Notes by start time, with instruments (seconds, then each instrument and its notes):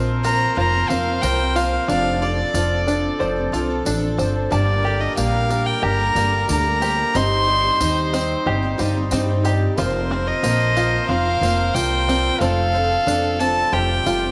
Already playing: upright piano F1 F2 F3 A#3 C4 A#4 C5 D#5, upright bass A#1, twelve-string acoustic guitar F3 C4 F4 A#4, brass ensemble F3 C4 A#4, five-string banjo C4 F4 A#4, trumpet C5
0.24 upright piano F3 A#3 C4 A#4 C5, twelve-string acoustic guitar F3 C4 F4, five-string banjo A#4, fiddle A#5, tambourine
0.28 twelve-string acoustic guitar A#4
0.57 upright bass F1, upright piano F3 A#3 C4 A#4 C5, five-string banjo F4, fiddle A#5
0.73 twelve-string acoustic guitar C4 F4 A#4
0.88 upright bass F1, twelve-string acoustic guitar F3 C4 F4 A#4, upright piano F3 A#3 C4 A#4 C5, five-string banjo C4, fiddle F5, tambourine
1.06 twelve-string acoustic guitar C4 F4 A#4
1.22 upright bass C2, upright piano F3 A#3 C4 A#4 C5, twelve-string acoustic guitar F3 C4 F4 A#4, five-string banjo A#4, fiddle G5, tambourine
1.39 twelve-string acoustic guitar C4 F4 A#4
1.55 upright piano F3 A#3 C4 A#4 C5, twelve-string acoustic guitar F3 C4 F4 A#4, five-string banjo F4, fiddle F5, tambourine
1.72 twelve-string acoustic guitar C4 F4 A#4
1.88 upright piano F1 F2 F3 C4 D4 A4 D5, upright bass F1, twelve-string acoustic guitar F3 C4 D4, five-string banjo D4, brass ensemble A4, trumpet D5, fiddle F5, tambourine
1.92 twelve-string acoustic guitar A4
2.21 upright piano F3 C4 D4 A4 C5, twelve-string acoustic guitar F3 C4 D4, fiddle D5, tambourine
2.25 twelve-string acoustic guitar A4
2.38 twelve-string acoustic guitar C4 D4 A4
2.53 upright bass F1, upright piano F3 C4 D4 A4 D5, twelve-string acoustic guitar F3 C4 D4 A4, five-string banjo F4, tambourine
2.86 upright piano F3 C4 D4 A4 D5, twelve-string acoustic guitar F3 C4 D4 A4, five-string banjo D4, tambourine
3.19 upright bass F1, upright piano F3 C4 D4 A4 D5, five-string banjo C5, tambourine
3.36 twelve-string acoustic guitar C4 D4 A4
3.52 upright bass C2, upright piano F3 C4 D4 A4 D5, twelve-string acoustic guitar F3 C4 D4, five-string banjo F4, tambourine
3.56 twelve-string acoustic guitar A4
3.69 twelve-string acoustic guitar C4 D4 A4
3.85 upright bass A1, upright piano F3 C4 D4 A4 D5, twelve-string acoustic guitar F3 C4 D4 A4, five-string banjo D4, tambourine
4.01 twelve-string acoustic guitar C4 D4 A4
4.17 upright bass G1, twelve-string acoustic guitar F3 C4 D4 A4, upright piano F3 C4 D4 A4 D5, five-string banjo C5, tambourine
4.33 twelve-string acoustic guitar C4 D4 A4
4.50 upright piano G1 G2 G3 A#3 D4 A#4 D5, upright bass G1, twelve-string acoustic guitar G2 D3 G3 A#3 D4, brass ensemble A#3 G4, trumpet A#4, fiddle D5, five-string banjo A5, tambourine
4.82 twelve-string acoustic guitar G3 A#3 D4 A4, upright piano G3 A#3 D4 A#4 D5, five-string banjo G4
4.99 twelve-string acoustic guitar G3 A#3 D4 A4, fiddle D#5
5.16 upright bass A#1, twelve-string acoustic guitar G2 D3 G3 A#3 D4, upright piano G3 A#3 D4 A#4 D5, five-string banjo A#3, fiddle F5, tambourine
5.48 twelve-string acoustic guitar G3 A#3 D4, upright piano G3 A#3 D4 A#4 D5, five-string banjo A#4, tambourine
5.66 fiddle G5
5.81 upright bass G1, upright piano G3 A#3 D4 A#4 D5, five-string banjo G4, fiddle A#5
5.99 twelve-string acoustic guitar G3 A#3 D4 A4
6.15 upright bass G1, upright piano G3 A#3 D4 A#4 D5, twelve-string acoustic guitar G3 A#3 D4 A4, five-string banjo A#3, tambourine
6.32 twelve-string acoustic guitar G3 A#3 D4 A4
6.48 upright bass D2, twelve-string acoustic guitar G2 D3 G3 A#3 D4 A4, upright piano G3 A#3 D4 A#4 D5, fiddle A#5, tambourine
6.65 twelve-string acoustic guitar G3 A#3 D4 A4
6.81 upright piano G3 A#3 D4 A#4 C5, twelve-string acoustic guitar G3 A#3 D4, five-string banjo G4, tambourine
6.85 twelve-string acoustic guitar A4
6.98 twelve-string acoustic guitar G3 A#3 D4 A4
7.14 upright piano G1 G2 G3 C4 D#4 C5 D#5, upright bass G1, twelve-string acoustic guitar G2 D#3 G3 C4 D#4 G4, brass ensemble G3 C4 D#4, five-string banjo C4, trumpet C5, fiddle C6, tambourine
7.46 twelve-string acoustic guitar G3 C4 D#4 G4, upright piano G3 C4 D#4 C5 D5
7.64 twelve-string acoustic guitar G3 C4 D#4 G4
7.80 upright bass D#2, twelve-string acoustic guitar G2 D#3 G3 C4 D#4 G4, upright piano G3 C4 D#4 C5 D#5, five-string banjo D#4, tambourine
8.13 twelve-string acoustic guitar G3 C4 D#4 G4, upright piano G3 C4 D#4 C5 D#5, five-string banjo C4, tambourine
8.46 upright bass G1, upright piano G3 C4 D#4 C5 D#5, five-string banjo G4
8.63 twelve-string acoustic guitar G3 C4 D#4 G4, upright piano D#5
8.78 upright bass G1, upright piano G3 C4 D#4 C5 D5 F5, twelve-string acoustic guitar G3 C4 D#4 G4, five-string banjo D#4, tambourine
8.95 twelve-string acoustic guitar G3 C4 D#4 G4
9.11 twelve-string acoustic guitar G2 D#3 G3 C4 D#4 G4, upright bass G2, upright piano G3 C4 D#4 C5 D5 G5, five-string banjo C4, tambourine
9.28 twelve-string acoustic guitar G3 C4 D#4 G4
9.44 upright piano G3 C4 D#4 C5 D5 A#5, twelve-string acoustic guitar G3 C4 D#4, five-string banjo G4, tambourine
9.48 twelve-string acoustic guitar G4
9.77 upright piano F1 F2 F3 A#3 C4 A#4 C5, upright bass F1, twelve-string acoustic guitar F3 C4 F4 A#4, brass ensemble F3 A#4, five-string banjo F4, trumpet C5, fiddle C5, tambourine
10.10 twelve-string acoustic guitar F3 C4 F4 A#4, upright piano F3 A#3 C4 A#4 C5, five-string banjo C4
10.26 twelve-string acoustic guitar C4 F4 A#4, fiddle D#5
10.43 upright bass A#1, upright piano F3 A#3 C4 A#4 C5, twelve-string acoustic guitar F3 C4 F4 A#4, five-string banjo A#3, tambourine
10.75 twelve-string acoustic guitar F3 C4 F4 A#4, upright piano F3 A#3 C4 A#4 C5, five-string banjo F4, tambourine
11.08 upright bass F1, upright piano F3 A#3 C4 A#4 C5, five-string banjo C4, fiddle F5
11.25 twelve-string acoustic guitar C4 F4 A#4
11.41 upright bass F1, twelve-string acoustic guitar F3 C4 F4 A#4, upright piano F3 A#3 C4 A#4 C5, five-string banjo A#3, tambourine
11.57 twelve-string acoustic guitar C4 F4 A#4
11.74 upright bass C2, upright piano F3 A#3 C4 A#4 D5, twelve-string acoustic guitar F3 C4 F4 A#4, five-string banjo F4, fiddle G5, tambourine
11.90 twelve-string acoustic guitar C4 F4 A#4
12.07 upright piano F3 A#3 C4 A#4 D5, twelve-string acoustic guitar F3 C4 F4 A#4, five-string banjo C4, tambourine
12.39 upright piano F1 F2 F3 C4 D4 A4 C5, upright bass F1, twelve-string acoustic guitar F3 A3 C4 D4, five-string banjo C4, trumpet A4, brass ensemble A4, fiddle F5, tambourine
12.43 twelve-string acoustic guitar A4
12.73 upright piano F3 C4 D4 A4 C5, twelve-string acoustic guitar A3 C4 D4 A4, tambourine
12.90 twelve-string acoustic guitar C4 D4 A4
13.06 upright bass F1, twelve-string acoustic guitar F3 A3 C4 D4 A4, upright piano F3 C4 D4 A4 D5, five-string banjo D4, tambourine
13.39 upright piano F3 C4 D4 A4 D5, twelve-string acoustic guitar A3 C4 D4 A4, five-string banjo C4, fiddle A5, tambourine
13.72 upright piano F1 F2 G3 C4 F4 A4 C5, upright bass F1, twelve-string acoustic guitar F3 A3 C4 F4, brass ensemble G3 A3 F4, five-string banjo G4, trumpet G4, fiddle G5, tambourine
13.76 twelve-string acoustic guitar G4
13.89 twelve-string acoustic guitar C4 F4 G4
14.05 upright bass F1, upright piano G3 C4 F4 A4 C5, twelve-string acoustic guitar A3 C4 F4, five-string banjo F4, tambourine
14.10 twelve-string acoustic guitar G4
14.23 twelve-string acoustic guitar C4 F4 G4